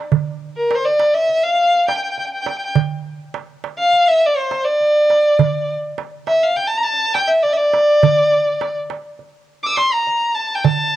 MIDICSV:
0, 0, Header, 1, 3, 480
1, 0, Start_track
1, 0, Tempo, 585366
1, 98, Time_signature, 9, 3, 24, 8
1, 8989, End_track
2, 0, Start_track
2, 0, Title_t, "Violin"
2, 0, Program_c, 0, 40
2, 463, Note_on_c, 0, 70, 65
2, 618, Note_on_c, 0, 72, 72
2, 630, Note_off_c, 0, 70, 0
2, 697, Note_on_c, 0, 74, 75
2, 710, Note_off_c, 0, 72, 0
2, 938, Note_on_c, 0, 76, 79
2, 950, Note_off_c, 0, 74, 0
2, 1179, Note_on_c, 0, 77, 90
2, 1191, Note_off_c, 0, 76, 0
2, 1535, Note_off_c, 0, 77, 0
2, 1540, Note_on_c, 0, 79, 77
2, 1597, Note_off_c, 0, 79, 0
2, 1614, Note_on_c, 0, 79, 60
2, 1666, Note_off_c, 0, 79, 0
2, 1671, Note_on_c, 0, 79, 59
2, 1725, Note_off_c, 0, 79, 0
2, 1732, Note_on_c, 0, 79, 52
2, 1787, Note_off_c, 0, 79, 0
2, 1793, Note_on_c, 0, 79, 63
2, 1848, Note_off_c, 0, 79, 0
2, 1855, Note_on_c, 0, 79, 48
2, 1905, Note_off_c, 0, 79, 0
2, 1910, Note_on_c, 0, 79, 59
2, 1968, Note_off_c, 0, 79, 0
2, 1980, Note_on_c, 0, 79, 52
2, 2034, Note_off_c, 0, 79, 0
2, 2043, Note_on_c, 0, 79, 57
2, 2097, Note_off_c, 0, 79, 0
2, 2112, Note_on_c, 0, 79, 53
2, 2163, Note_off_c, 0, 79, 0
2, 2172, Note_on_c, 0, 79, 62
2, 2223, Note_off_c, 0, 79, 0
2, 3110, Note_on_c, 0, 77, 90
2, 3344, Note_on_c, 0, 76, 82
2, 3357, Note_off_c, 0, 77, 0
2, 3491, Note_on_c, 0, 74, 78
2, 3503, Note_off_c, 0, 76, 0
2, 3579, Note_on_c, 0, 72, 73
2, 3591, Note_off_c, 0, 74, 0
2, 3808, Note_on_c, 0, 74, 84
2, 3821, Note_off_c, 0, 72, 0
2, 4685, Note_off_c, 0, 74, 0
2, 5146, Note_on_c, 0, 76, 80
2, 5277, Note_on_c, 0, 77, 77
2, 5290, Note_off_c, 0, 76, 0
2, 5382, Note_on_c, 0, 79, 85
2, 5394, Note_off_c, 0, 77, 0
2, 5470, Note_on_c, 0, 81, 84
2, 5482, Note_off_c, 0, 79, 0
2, 5553, Note_on_c, 0, 82, 90
2, 5565, Note_off_c, 0, 81, 0
2, 5602, Note_on_c, 0, 81, 91
2, 5614, Note_off_c, 0, 82, 0
2, 5854, Note_on_c, 0, 79, 85
2, 5867, Note_off_c, 0, 81, 0
2, 5970, Note_on_c, 0, 76, 78
2, 5982, Note_off_c, 0, 79, 0
2, 6087, Note_on_c, 0, 74, 78
2, 6100, Note_off_c, 0, 76, 0
2, 6172, Note_on_c, 0, 76, 64
2, 6185, Note_off_c, 0, 74, 0
2, 6204, Note_on_c, 0, 74, 89
2, 6217, Note_off_c, 0, 76, 0
2, 7155, Note_off_c, 0, 74, 0
2, 7897, Note_on_c, 0, 86, 80
2, 7920, Note_on_c, 0, 88, 74
2, 7932, Note_off_c, 0, 86, 0
2, 7953, Note_on_c, 0, 86, 87
2, 7965, Note_off_c, 0, 88, 0
2, 8005, Note_on_c, 0, 84, 94
2, 8018, Note_off_c, 0, 86, 0
2, 8131, Note_on_c, 0, 82, 83
2, 8143, Note_off_c, 0, 84, 0
2, 8486, Note_on_c, 0, 81, 76
2, 8499, Note_off_c, 0, 82, 0
2, 8654, Note_on_c, 0, 79, 75
2, 8666, Note_off_c, 0, 81, 0
2, 8724, Note_on_c, 0, 81, 94
2, 8737, Note_off_c, 0, 79, 0
2, 8989, Note_off_c, 0, 81, 0
2, 8989, End_track
3, 0, Start_track
3, 0, Title_t, "Darbuka"
3, 97, Note_on_c, 9, 64, 78
3, 179, Note_off_c, 9, 64, 0
3, 580, Note_on_c, 9, 63, 64
3, 662, Note_off_c, 9, 63, 0
3, 818, Note_on_c, 9, 63, 63
3, 900, Note_off_c, 9, 63, 0
3, 1063, Note_on_c, 9, 62, 29
3, 1145, Note_off_c, 9, 62, 0
3, 1545, Note_on_c, 9, 63, 70
3, 1627, Note_off_c, 9, 63, 0
3, 1785, Note_on_c, 9, 62, 26
3, 1867, Note_off_c, 9, 62, 0
3, 2019, Note_on_c, 9, 63, 68
3, 2101, Note_off_c, 9, 63, 0
3, 2257, Note_on_c, 9, 64, 84
3, 2339, Note_off_c, 9, 64, 0
3, 2740, Note_on_c, 9, 63, 68
3, 2822, Note_off_c, 9, 63, 0
3, 2983, Note_on_c, 9, 63, 63
3, 3065, Note_off_c, 9, 63, 0
3, 3222, Note_on_c, 9, 62, 28
3, 3304, Note_off_c, 9, 62, 0
3, 3699, Note_on_c, 9, 63, 55
3, 3781, Note_off_c, 9, 63, 0
3, 3940, Note_on_c, 9, 62, 25
3, 4022, Note_off_c, 9, 62, 0
3, 4182, Note_on_c, 9, 63, 55
3, 4264, Note_off_c, 9, 63, 0
3, 4421, Note_on_c, 9, 64, 90
3, 4503, Note_off_c, 9, 64, 0
3, 4904, Note_on_c, 9, 63, 64
3, 4986, Note_off_c, 9, 63, 0
3, 5143, Note_on_c, 9, 63, 62
3, 5225, Note_off_c, 9, 63, 0
3, 5382, Note_on_c, 9, 62, 28
3, 5464, Note_off_c, 9, 62, 0
3, 5863, Note_on_c, 9, 63, 58
3, 5945, Note_off_c, 9, 63, 0
3, 6102, Note_on_c, 9, 62, 22
3, 6184, Note_off_c, 9, 62, 0
3, 6342, Note_on_c, 9, 63, 63
3, 6424, Note_off_c, 9, 63, 0
3, 6584, Note_on_c, 9, 64, 89
3, 6666, Note_off_c, 9, 64, 0
3, 6826, Note_on_c, 9, 62, 24
3, 6908, Note_off_c, 9, 62, 0
3, 6941, Note_on_c, 9, 62, 25
3, 7023, Note_off_c, 9, 62, 0
3, 7062, Note_on_c, 9, 63, 70
3, 7144, Note_off_c, 9, 63, 0
3, 7299, Note_on_c, 9, 63, 62
3, 7381, Note_off_c, 9, 63, 0
3, 7537, Note_on_c, 9, 62, 28
3, 7619, Note_off_c, 9, 62, 0
3, 8014, Note_on_c, 9, 63, 62
3, 8096, Note_off_c, 9, 63, 0
3, 8257, Note_on_c, 9, 62, 26
3, 8339, Note_off_c, 9, 62, 0
3, 8730, Note_on_c, 9, 64, 91
3, 8812, Note_off_c, 9, 64, 0
3, 8989, End_track
0, 0, End_of_file